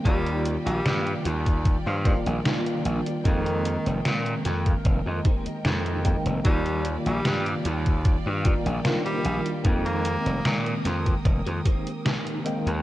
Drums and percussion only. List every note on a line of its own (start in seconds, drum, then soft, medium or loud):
0.05 kick loud
0.05 closed hi-hat medium
0.27 closed hi-hat soft
0.46 closed hi-hat medium
0.67 closed hi-hat medium
0.86 snare loud
0.86 closed hi-hat medium
1.07 closed hi-hat soft
1.25 closed hi-hat medium
1.46 kick medium
1.46 closed hi-hat soft
1.65 kick loud
1.65 closed hi-hat medium
2.05 kick loud
2.05 closed hi-hat medium
2.26 closed hi-hat medium
2.46 snare loud
2.46 closed hi-hat medium
2.66 closed hi-hat soft
2.85 closed hi-hat medium
3.06 closed hi-hat medium
3.25 kick loud
3.25 closed hi-hat medium
3.46 closed hi-hat soft
3.65 closed hi-hat medium
3.86 closed hi-hat medium
4.05 snare loud
4.05 closed hi-hat medium
4.26 closed hi-hat soft
4.45 snare soft
4.45 closed hi-hat medium
4.66 kick medium
4.66 closed hi-hat soft
4.85 kick loud
4.85 closed hi-hat medium
5.25 kick loud
5.25 closed hi-hat medium
5.46 closed hi-hat medium
5.65 snare loud
5.65 closed hi-hat medium
5.86 closed hi-hat soft
6.05 kick medium
6.05 closed hi-hat medium
6.26 closed hi-hat medium
6.45 kick loud
6.45 closed hi-hat medium
6.66 closed hi-hat soft
6.85 closed hi-hat medium
7.06 closed hi-hat soft
7.25 snare loud
7.25 closed hi-hat medium
7.46 closed hi-hat soft
7.65 closed hi-hat medium
7.86 kick medium
7.86 closed hi-hat medium
8.05 kick loud
8.05 closed hi-hat medium
8.45 kick loud
8.45 closed hi-hat medium
8.66 closed hi-hat medium
8.85 snare loud
8.85 closed hi-hat medium
9.06 closed hi-hat soft
9.25 closed hi-hat medium
9.46 closed hi-hat medium
9.65 kick loud
9.65 closed hi-hat medium
9.86 closed hi-hat soft
10.05 closed hi-hat medium
10.26 closed hi-hat medium
10.45 snare loud
10.45 closed hi-hat medium
10.66 closed hi-hat soft
10.85 snare soft
10.85 closed hi-hat medium
11.06 kick medium
11.06 closed hi-hat medium
11.25 kick loud
11.25 closed hi-hat medium
11.46 closed hi-hat soft
11.65 kick loud
11.65 closed hi-hat medium
11.87 closed hi-hat medium
12.06 snare loud
12.06 closed hi-hat medium
12.27 closed hi-hat soft
12.46 closed hi-hat medium
12.67 closed hi-hat medium